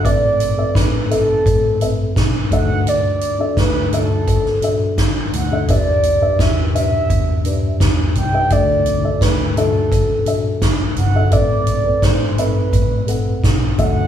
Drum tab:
HH |x-x-x-x-x-x-x-x-|x-x-x-x-x-x-x-x-|x-x-x-x-x-x-x-x-|x-x-x-x-x-x-x-x-|
SD |----o-------o---|----o----o--o---|----o-------o---|----o-------o---|
FT |----------------|----------------|--o----------oo-|--o----------oo-|
BD |o---o---o---o-o-|----o---o---o---|o---o---o---o---|o---o---o---o---|

HH |x-x-x-x-x-x-x-x-|
SD |----o-------o---|
FT |--o----------oo-|
BD |o---o---o---o-o-|